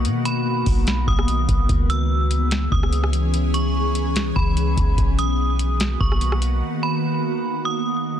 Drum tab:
HH |x-x---o-x---x-x-|x-x---x-x---x-x-|x-x---x-x---x-x-|x-x---x-x---x-x-|
SD |--------o--r----|--------o--r-r--|--------o-------|--------o--r-r--|
BD |------o---o---o-|o---------o-----|----------o---o-|o---------o-----|

HH |----------------|
SD |----------------|
BD |----------------|